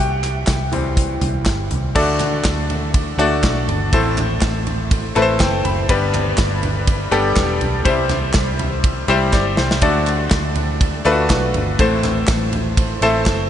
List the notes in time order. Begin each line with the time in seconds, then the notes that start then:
Already playing: G4 G5
0.00 C2
0.23 snare, clap, closed hi-hat
0.47 C2, kick, snare, clap, closed hi-hat
0.72 E3 G3 C4, closed hi-hat, floor tom
0.97 kick, closed hi-hat
1.21 C2, closed hi-hat, floor tom
1.46 G1, kick, snare, clap, closed hi-hat
1.71 C2, closed hi-hat, floor tom
1.95 D2 D3 A3 D4 F#4 A4 D5, kick, crash
2.20 snare, clap, floor tom, ride
2.44 D2, kick, snare, clap, ride
2.70 floor tom, ride
2.94 kick, ride
3.18 D2 A3 D4 F#4 A4 D5, ride
3.43 B1, kick, snare, clap, ride
3.68 G1, floor tom, ride
3.93 A1 A2 A3 C4 E4 A4 C5, kick, ride
4.17 clap, floor tom, ride
4.41 A1, kick, snare, clap, ride
4.67 floor tom, ride
4.91 kick, ride
5.15 A1 A3 C4 E4 A4 B4, ride
5.22 C5
5.40 F#1 G5, kick, snare, clap, ride
5.65 F#1 B5, floor tom, ride
5.89 G1 G2 G3 B3 D4 G4 B4, kick, ride
6.14 clap, floor tom, ride
6.38 G1, kick, snare, clap, ride
6.63 floor tom, ride
6.87 kick, ride
7.11 G1 G3 B3 D4 G4 A4, ride
7.36 E1, kick, snare, clap, ride
7.61 B1, floor tom, ride
7.85 C2 C3 G3 C4 E4 G4 C5, kick, ride
8.09 snare, clap, floor tom, ride
8.34 C2, kick, snare, clap, ride
8.59 floor tom, ride
8.84 kick, ride
9.08 C2 G3 C4 E4 G4 C5, ride
9.33 G1 D5, kick, snare, clap
9.57 C2 C5, snare
9.71 snare
9.81 D2 D3 A3 D4 F#4 A4 D5, kick, ride
10.06 clap, ride
10.31 D2, kick, snare, clap, ride
10.55 floor tom, ride
10.81 kick, ride
11.05 D2 A3 D4 F4 A4 B4, ride
11.11 F#4
11.30 B1, kick, snare, clap, ride
11.54 G1, floor tom, ride
11.79 A1 A2 A3 C4 E4 A4 C5, kick, ride
12.03 snare, clap, floor tom, ride
12.28 A1, kick, snare, clap, ride
12.53 floor tom, ride
12.77 kick, ride
13.01 A1 A3 C4 E4 A4 C5, ride
13.26 F#1, kick, snare, clap, ride